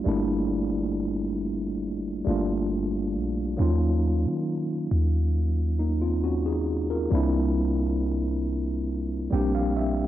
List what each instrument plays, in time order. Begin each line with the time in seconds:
Already playing: tine electric piano G3 A3 A#3 D4 F4
0.04 808-style bass G1, tine electric piano G3 A3 A#3 D4
0.09 tine electric piano E4
2.24 808-style bass G1, tine electric piano G3 A3 A#3 D4
2.29 tine electric piano F4
3.15 808-style bass A#1
3.57 808-style bass D#2, tine electric piano F#3 A#3 C#4 D#4
3.61 tine electric piano F4
4.25 808-style bass D#3
4.91 808-style bass D#2
5.79 tine electric piano A#3 D#4
6.02 tine electric piano C4 F4
6.24 tine electric piano C#4 F#4
6.46 tine electric piano D#4 G#4
6.90 tine electric piano F4 A#4
7.10 808-style bass C2, tine electric piano G3 A#3 C4 D4
7.15 tine electric piano E4
9.30 808-style bass A#1, tine electric piano G3 A#3 C4 D4 G5
9.35 tine electric piano G4
9.55 tine electric piano F5
9.77 tine electric piano E5